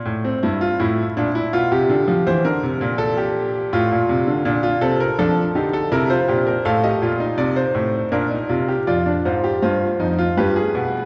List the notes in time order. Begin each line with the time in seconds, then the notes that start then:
0.05 A2
0.24 C4
0.43 G2 E4
0.61 F4
0.79 A2 E4
1.17 A#2 D4
1.35 E4
1.53 B2 F4
1.72 C3 G4
1.89 D3
2.08 F3
2.27 E3 C5
2.45 D3 A#4
2.63 C3
2.81 A#2
2.98 A4
3.18 G4
3.73 A2 F4
3.91 A#2
4.09 C3
4.27 D3
4.45 A#2 D4
4.63 F4
4.81 C3 C4 A4
5.00 A#4
5.19 F3 D4 A4
5.55 D3 D#4 G4
5.73 A4
5.92 C3 E4 A#4
6.10 F4 C5
6.28 A#2 G4
6.47 A#4
6.65 A2 A4 F5
6.84 G4 D#5
7.02 A#2 F4
7.20 D#4
7.37 C3 D5
7.56 C5
7.74 A2
8.12 A#2 D4 A#4
8.31 D#4
8.49 C3 F4
8.68 G4
8.87 F2 F4 D5
9.06 D4
9.25 G#2 F4 C5
9.44 G4
9.62 G2 F4 C5
10.00 F2 D#4
10.19 F4
10.37 G2 G4 B4
10.56 G#4
10.75 B2